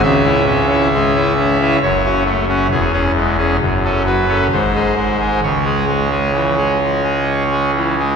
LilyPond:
<<
  \new Staff \with { instrumentName = "Pipe organ" } { \time 3/4 \key cis \minor \tempo 4 = 66 << { e''2 cis''8 r8 | gis'4. b'8 bis'4 | cis''2~ cis''8 r8 | } \\ { cis16 <cis' e'>16 cis'16 <cis' e'>16 gis16 <cis' e'>16 cis'16 <cis' e'>16 fis,16 <cis' fis'>16 a16 <cis' fis'>16 | e,16 <cis' gis'>16 gis16 <cis' gis'>16 fis,16 <cis' a'>16 fis16 <cis' a'>16 gis,16 <gis gis'>16 gis16 <gis gis'>16 | cis16 <gis gis'>16 gis16 <gis gis'>16 e16 <gis gis'>16 gis16 <gis gis'>8 <gis gis'>16 e16 <gis gis'>16 | } >> }
  \new Staff \with { instrumentName = "Pipe organ" } { \clef bass \time 3/4 \key cis \minor cis,2 fis,,4 | e,,4 fis,,4 gis,,4 | cis,2. | }
>>